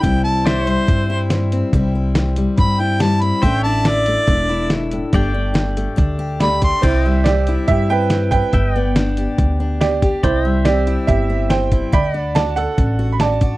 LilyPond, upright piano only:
\new Staff \with { instrumentName = "Upright piano" } { \time 4/4 \key c \lydian \tempo 4 = 141 << { r1 | r1 | r1 | r2. d''4 |
c''4 d''4 e''8 g''4 g''8~ | g''4 r2 d''4 | c''4 d''4 e''4 g''4 | b''4 a''8 fis''8~ \tuplet 3/2 { fis''4~ fis''16 b''16 } a''4 | } \\ { r1 | r1 | r1 | r2. g'4 |
e'4 g'4 g'8 b'4 b'8~ | b'4 r2 g'4 | e'4 g'4 g'4 c''4 | d''4 d''8 a'4. d''4 | } >> }